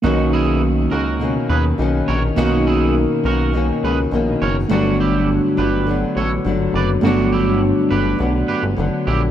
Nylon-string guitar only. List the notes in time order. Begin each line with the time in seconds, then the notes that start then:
0.04 B2 D#3 A#3 C#4
0.90 A#3 C#4
0.95 D#3
1.20 B2 D#3 A#3 C#4
1.78 B2 D#3 A#3 C#4
2.36 B2 D#3 A#3 C#4
3.24 A#3 C#4
3.28 D#3
3.53 B2 D#3 A#3 C#4
4.11 B2 D#3 A#3
4.16 C#4
4.69 G2 D3 F#3 B3 D4
5.57 B3 D4
5.61 F#3
5.87 D3 F#3 B3 D4
6.45 D3 F#3 B3
6.49 D4
7.01 G2 D3 F#3
7.06 B3 D4
8.19 D3 F#3 B3
8.23 D4
8.77 D3 F#3 B3 D4